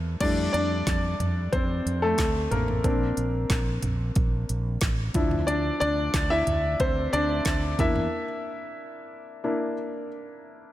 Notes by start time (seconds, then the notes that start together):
Already playing: E2 A#3 D4 E4
0.21 F2 G3 A3 D4 E4 D5, kick, closed hi-hat, crash
0.53 F2 D4 D5, closed hi-hat
0.87 F2, kick, snare, clap, closed hi-hat
1.20 F2, closed hi-hat, floor tom
1.52 F2 C4 C5, kick, closed hi-hat
1.86 F2, closed hi-hat
2.02 A3 A4
2.18 D2, kick, snare, clap, closed hi-hat
2.51 A1 A#3 A#4, closed hi-hat, floor tom
2.68 floor tom
2.84 A#1 A#3 C4 D4, kick, closed hi-hat
3.17 A#1, closed hi-hat
3.50 A#1, kick, snare, clap, closed hi-hat
3.82 A#1, closed hi-hat, floor tom
4.15 A#1, kick, closed hi-hat
4.49 A#1, closed hi-hat
4.81 A1, kick, snare, clap, closed hi-hat
5.14 D2 F3 D4 E4, kick, closed hi-hat, floor tom
5.31 floor tom
5.47 D4 D5, closed hi-hat
5.80 D2 D4 D5, closed hi-hat
6.14 D2, kick, snare, clap, closed hi-hat
6.30 E4 E5
6.47 D2, closed hi-hat, floor tom
6.80 D2 C4 C5, kick, closed hi-hat
7.13 D2 D4 D5, closed hi-hat
7.45 D2, kick, snare, clap, closed hi-hat
7.79 E2 A#3 D4 E4 E5, kick, closed hi-hat, floor tom
7.96 floor tom
9.44 A#3 D4 E4